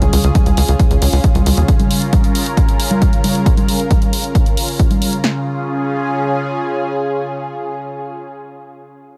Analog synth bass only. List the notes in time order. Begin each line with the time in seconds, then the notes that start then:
0.02 C#2
0.13 C#2
0.24 C#2
0.46 C#2
0.57 C#2
0.68 C#2
0.91 C#2
1.02 C#2
1.13 C#2
1.35 C#2
1.46 C#2
1.57 D#2